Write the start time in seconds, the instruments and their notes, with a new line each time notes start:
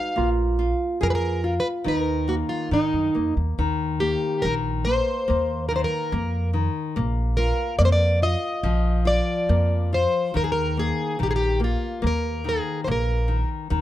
Already playing: nylon-string guitar G#3 D#4, tine electric piano F#4, twelve-string acoustic guitar F5
0.16 upright bass A#1, nylon-string guitar A#3, tine electric piano F4
0.59 nylon-string guitar F4
1.01 upright bass F2, nylon-string guitar G#4, twelve-string acoustic guitar A#4
1.10 twelve-string acoustic guitar B4
1.15 twelve-string acoustic guitar A#4
1.44 nylon-string guitar F4
1.60 twelve-string acoustic guitar B4
1.84 upright bass D#2, nylon-string guitar D#3, tine electric piano D#4, twelve-string acoustic guitar A#4
2.28 nylon-string guitar A#3, twelve-string acoustic guitar F#4
2.49 twelve-string acoustic guitar F4
2.71 upright bass G#2, nylon-string guitar D#3, twelve-string acoustic guitar D#4
2.93 upright bass F#2
3.15 upright bass F2, nylon-string guitar A#3
3.37 upright bass D#2
3.59 upright bass D#2, nylon-string guitar D#3
4.00 nylon-string guitar A#3, twelve-string acoustic guitar G4
4.42 upright bass A#1, nylon-string guitar D#3, twelve-string acoustic guitar A#4
4.85 nylon-string guitar A#3, twelve-string acoustic guitar C5
5.28 upright bass D#2, nylon-string guitar A#3
5.69 nylon-string guitar D#3, twelve-string acoustic guitar A#4
5.76 twelve-string acoustic guitar C5
5.84 twelve-string acoustic guitar A#4
6.12 upright bass F2, nylon-string guitar A#3
6.53 nylon-string guitar D#3
6.96 upright bass A#1, nylon-string guitar A#3
7.37 nylon-string guitar F4, twelve-string acoustic guitar A#4
7.79 upright bass F2, nylon-string guitar A#3, twelve-string acoustic guitar D5
7.85 twelve-string acoustic guitar C5
7.92 twelve-string acoustic guitar D5
8.22 nylon-string guitar F4, twelve-string acoustic guitar D#5
8.63 upright bass A#1, nylon-string guitar F3
9.05 nylon-string guitar F4, twelve-string acoustic guitar D5
9.49 upright bass F2, nylon-string guitar A#3
9.93 nylon-string guitar F4, twelve-string acoustic guitar C5
10.34 upright bass D#2, nylon-string guitar D#3, twelve-string acoustic guitar A#4
10.44 twelve-string acoustic guitar G#4
10.52 twelve-string acoustic guitar A#4
10.77 nylon-string guitar A#3, twelve-string acoustic guitar G#4
11.19 upright bass A#1, nylon-string guitar D#3
11.23 twelve-string acoustic guitar G4
11.31 twelve-string acoustic guitar G#4
11.36 twelve-string acoustic guitar G4
11.60 nylon-string guitar A#3
11.64 twelve-string acoustic guitar F4
12.02 upright bass D#2, nylon-string guitar A#3
12.07 twelve-string acoustic guitar A#4
12.44 nylon-string guitar D#3
12.49 twelve-string acoustic guitar G#4
12.84 upright bass A#1, nylon-string guitar A#3, twelve-string acoustic guitar C5
12.92 twelve-string acoustic guitar A#4
13.28 nylon-string guitar D#3
13.70 upright bass D#2, nylon-string guitar D#3